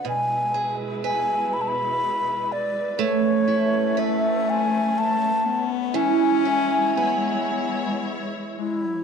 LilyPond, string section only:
\new Staff \with { instrumentName = "String section" } { \time 6/8 \key e \major \tempo 4. = 41 << { b'2.~ | b'2. | cis''2. | } \\ { <b, gis e'>2. | <a cis'>2. | <gis e'>2. | } >> }